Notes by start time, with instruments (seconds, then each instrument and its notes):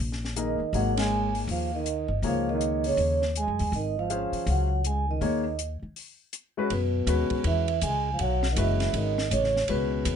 0.00 upright bass A#1
0.12 snare
0.25 snare
0.36 trombone D#3, grand piano A#3 D#4 G#4 A#4, vibraphone D#5, closed hi-hat
0.60 muted upright bass stroke
0.73 upright bass G#1, trombone F#3, grand piano A#3 D#4 G#4 C#5, vibraphone F#5, open hi-hat
0.97 trombone G#3, vibraphone G#5, snare, ride
1.35 open hi-hat
1.47 upright bass D#2, trombone F3, vibraphone F5, open hi-hat
1.74 trombone D#3, vibraphone D#5
1.86 closed hi-hat
2.08 upright bass G1
2.22 upright bass C#2, trombone F3, grand piano A#3 D#4 G#4 C#5, open hi-hat
2.27 vibraphone F5
2.49 trombone D#3, vibraphone D#5
2.61 closed hi-hat
2.84 trombone C#3, vibraphone C#5, open hi-hat
2.97 upright bass D#2, open hi-hat
3.22 snare
3.36 trombone G#3, vibraphone G#5, closed hi-hat
3.48 upright bass F#2
3.59 upright bass D#2, open hi-hat
3.72 upright bass G#1, trombone D#3, vibraphone D#5, open hi-hat
3.98 trombone F3, vibraphone F5
4.10 grand piano C#4 G#4 C5 F5, closed hi-hat
4.32 muted upright bass stroke, open hi-hat
4.46 upright bass C#2, trombone F#3, vibraphone F#5, open hi-hat
4.84 trombone G#3, vibraphone G#5, closed hi-hat
5.09 trombone D#3, vibraphone D#5
5.21 upright bass D#2, grand piano A#3 D#4 G#4 C#5, open hi-hat
5.59 closed hi-hat
5.82 muted upright bass stroke
5.96 open hi-hat
6.33 closed hi-hat
6.57 grand piano G#3 C#4 F#4 B4
6.70 upright bass F#2, trombone B2, vibraphone B4, ride
7.07 upright bass D#2, grand piano G#3 C#4 F#4 B4, hi-hat pedal, ride
7.30 muted upright bass stroke, kick, ride
7.44 upright bass E2, trombone E3, vibraphone E5, ride
7.68 ride
7.81 upright bass C#2, trombone G#3, vibraphone G#5, hi-hat pedal, ride
8.13 trombone F3, vibraphone F5
8.19 upright bass B1, trombone F#3, vibraphone F#5, ride
8.43 snare
8.51 trombone D#3, vibraphone D#5
8.56 upright bass F#1, trombone E3, grand piano G#3 C#4 F#4 B4, vibraphone E5, hi-hat pedal, ride
8.80 snare, ride
8.93 upright bass G#1, trombone D#3, vibraphone D#5, ride
9.18 snare
9.31 upright bass A1, trombone C#3, vibraphone C#5, hi-hat pedal, ride
9.44 snare
9.56 snare
9.68 upright bass C#2, trombone B2, grand piano G#3 C#4 F#4 B4, vibraphone B4, ride
10.05 upright bass D#2, hi-hat pedal, ride